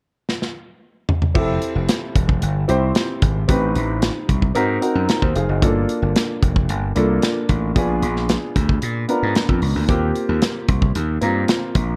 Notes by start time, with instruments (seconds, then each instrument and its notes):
0.29 snare
0.42 snare
1.09 floor tom
1.22 floor tom
1.34 slap bass F1, grand piano C4 E4 G4 A4, kick, crash
1.62 closed hi-hat
1.75 slap bass F1
1.89 snare, closed hi-hat
2.16 slap bass E1, kick, closed hi-hat
2.29 kick
2.42 slap bass G1, closed hi-hat
2.68 slap bass C2, grand piano C4 E4 G4 C5, closed hi-hat
2.95 snare, closed hi-hat
3.22 slap bass G#1, kick, closed hi-hat
3.48 slap bass A1, grand piano C4 D#4 G4 B4, kick, closed hi-hat
3.75 slap bass A1, closed hi-hat
4.02 snare, closed hi-hat
4.29 slap bass C2, kick, closed hi-hat
4.42 kick
4.55 slap bass G#2, grand piano C4 D#4 F#4 A#4, closed hi-hat
4.81 grand piano C4 D#4 F#4 A#4, closed hi-hat
4.95 slap bass F#2
5.09 snare, closed hi-hat
5.22 slap bass D#2, grand piano D#4 C5, kick
5.36 slap bass F1, grand piano G#4 F5, closed hi-hat
5.49 slap bass F#1, grand piano F#4 D#5
5.62 slap bass G1, grand piano A#3 D4 F4 A4, kick, closed hi-hat
5.89 closed hi-hat
6.02 slap bass G1
6.16 snare, closed hi-hat
6.43 slap bass F1, kick, closed hi-hat
6.56 kick
6.69 slap bass G1, closed hi-hat
6.95 slap bass C2, grand piano A#3 D4 F4 A4, closed hi-hat
7.22 snare, closed hi-hat
7.49 slap bass A1, kick, closed hi-hat
7.75 slap bass A#1, grand piano B3 D4 F4 G#4, kick, closed hi-hat
8.02 slap bass A#1, closed hi-hat
8.16 snare
8.29 snare, closed hi-hat
8.56 slap bass D2, kick, closed hi-hat
8.69 kick
8.82 slap bass A#2, closed hi-hat
9.08 grand piano B3 D4 F4 A#4, closed hi-hat
9.23 slap bass G#2
9.35 snare, closed hi-hat
9.49 slap bass F2, kick
9.62 slap bass C#2, open hi-hat
9.75 slap bass D2
9.88 slap bass D#2, grand piano A#3 C4 F4 G4, kick, closed hi-hat
10.16 closed hi-hat
10.29 slap bass D#2
10.42 snare, closed hi-hat
10.68 slap bass C2, kick, closed hi-hat
10.82 kick
10.95 slap bass D#2, closed hi-hat
11.21 slap bass G2, grand piano A#3 C4 F4 A#4, closed hi-hat
11.48 snare, closed hi-hat
11.75 slap bass A#1, kick, closed hi-hat